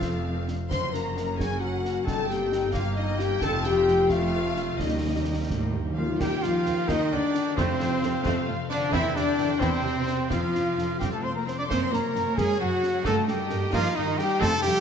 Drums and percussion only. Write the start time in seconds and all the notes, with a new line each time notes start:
0.02 concert bass drum, snare
0.48 snare
0.71 concert bass drum, snare, crash
0.94 snare
1.17 snare
1.40 concert bass drum, snare
1.85 snare
2.07 concert bass drum, snare
2.31 snare
2.52 snare
2.74 concert bass drum, snare
3.19 snare
3.41 concert bass drum, snare
3.64 snare
3.88 snare
4.10 concert bass drum, snare
4.56 snare
4.80 concert bass drum, snare
5.51 concert bass drum, snare
6.21 concert bass drum, snare, crash
6.43 snare
6.66 snare
6.89 concert bass drum, snare
7.34 snare
7.58 concert bass drum, snare
7.80 snare
8.03 snare
8.25 concert bass drum, snare
8.71 snare
8.94 concert bass drum, snare, crash
9.16 snare
9.38 snare
9.61 concert bass drum, snare
10.07 snare
10.31 concert bass drum, snare
10.55 snare
10.78 snare
11.02 concert bass drum, snare
11.48 snare
11.71 concert bass drum, snare, crash
11.93 snare
12.16 snare
12.38 concert bass drum, snare
12.83 snare
13.05 concert bass drum, snare
13.28 snare
13.50 snare
13.73 concert bass drum, snare
14.19 snare
14.42 concert bass drum, snare, crash
14.64 snare